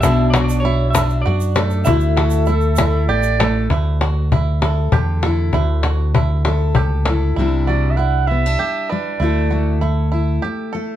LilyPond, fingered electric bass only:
\new Staff \with { instrumentName = "Fingered electric bass" } { \clef bass \time 3/4 \key d \major \tempo 4 = 98 b,,2 fis,4 | d,2 a,,4 | d,2 e,4 | d,2 cis,4 |
c,2 r4 | d,2 r4 | }